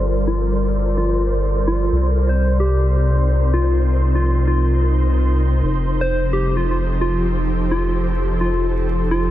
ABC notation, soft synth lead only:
X:1
M:4/4
L:1/16
Q:"Swing 16ths" 1/4=129
K:Cdor
V:1 name="Soft synth lead"
z2 F2 z4 F2 z4 F2 | z3 c2 z G2 z6 F2 | z3 F2 z F3 z6 z | z3 c2 z G2 F F z2 F2 z2 |
z2 F2 z4 F2 z4 F2 |]